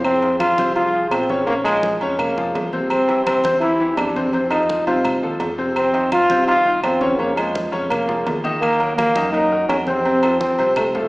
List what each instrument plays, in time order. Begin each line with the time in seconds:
Already playing: fingered electric bass F2
0.04 trombone C4, high conga, low agogo, claves
0.22 grand piano F3 F4 G#4, high conga, low agogo
0.40 trombone F4, high conga, low timbale, low agogo, claves
0.58 fingered electric bass C2, grand piano C3 C4 C5, high conga, low agogo
0.76 grand piano F3 F4 G#4, trombone F4, high conga, low agogo
0.94 grand piano F3 F4 G#4, high conga
1.11 fingered electric bass A#1, trombone C4, high conga, low timbale, low agogo, claves
1.29 grand piano C#3 C#4 C#5, high conga
1.47 grand piano C#3 C#4 C#5, trombone A#3, high conga, low agogo
1.64 grand piano F3 F4 G#4, trombone G#3, high conga, low agogo, claves
1.83 high conga, low timbale
2.01 fingered electric bass F2, grand piano C#3 C#4 C#5, high conga, low agogo
2.18 trombone A#3, high conga, low conga, low agogo, claves
2.37 grand piano F3 F4 G#4, high conga, low conga
2.55 fingered electric bass C2, high conga, low timbale, low agogo
2.72 grand piano C3 C4 C5, high conga
2.90 trombone C4, high conga, low agogo, claves
3.08 grand piano E3 E4 G4, high conga, low agogo
3.25 trombone C4, high conga, low timbale, low agogo, claves
3.44 fingered electric bass E2, grand piano C3 C4 C5, high conga, low agogo
3.60 grand piano E3 E4 G4, trombone E4, high conga, low agogo
3.80 grand piano E3 E4 G4, high conga
3.97 fingered electric bass F2, trombone D4, high conga, low timbale, low agogo, claves
4.16 grand piano C3 C4 C5, high conga
4.32 grand piano C3 C4 C5, trombone C4, high conga, low agogo
4.51 grand piano F3 F4 A4, trombone D#4, high conga, low agogo, claves
4.69 high conga, low timbale
4.87 fingered electric bass C2, grand piano C3 C4 C5, trombone F4, high conga, low agogo
5.05 high conga, low conga, low agogo, claves
5.23 fingered electric bass D#2, grand piano F3 F4 A4, high conga
5.40 fingered electric bass F2, high conga, low timbale, low agogo
5.58 grand piano C3 C4 C5
5.76 trombone C4, high conga, low agogo, claves
5.93 grand piano D#3 D#4 F4, high conga, low agogo
6.12 trombone F4, high conga, low timbale, low agogo, claves
6.30 fingered electric bass C2, grand piano C3 C4 C5, high conga, low agogo
6.47 grand piano D#3 D#4 F4, trombone F4, high conga, low agogo
6.65 grand piano D#3 D#4 F4, high conga
6.83 fingered electric bass F2, trombone C4, high conga, low timbale, low agogo, claves
7.01 grand piano C#3 C#4 C#5, high conga
7.18 grand piano C#3 C#4 C#5, trombone A#3, high conga, low agogo
7.36 grand piano F3 F4 G#4, trombone G#3, high conga, low agogo, claves
7.55 high conga, low timbale
7.72 fingered electric bass F2, grand piano C#3 C#4 C#5, high conga, low agogo
7.89 trombone A#3, high conga, low conga, low agogo, claves
8.08 grand piano F3 F4 G#4, high conga, low conga
8.27 fingered electric bass D#2, high conga, low timbale, low agogo
8.44 grand piano D#3 D#4 D#5, high conga
8.61 trombone A#3, high conga, low agogo, claves
8.79 grand piano F#3 F#4 A#4, high conga, low agogo
8.97 trombone A#3, high conga, low timbale, low agogo, claves
9.16 fingered electric bass F#2, grand piano D#3 D#4 D#5, high conga, low agogo
9.32 grand piano F#3 F#4 A#4, trombone D#4, high conga, low agogo
9.51 grand piano F#3 F#4 A#4, high conga
9.69 fingered electric bass F2, trombone C#4, high conga, low timbale, low agogo, claves
9.87 grand piano C3 C4 C5, trombone C4, high conga
10.05 grand piano C3 C4 C5, high conga, low agogo
10.23 grand piano F3 F4 A4, high conga, low agogo, claves
10.40 trombone C4, high conga, low timbale
10.58 fingered electric bass C2, grand piano C3 C4 C5, high conga, low agogo
10.76 trombone A3, high conga, low conga, low agogo, claves
10.95 fingered electric bass C2, grand piano F3 F4 A4, trombone A3, high conga, low conga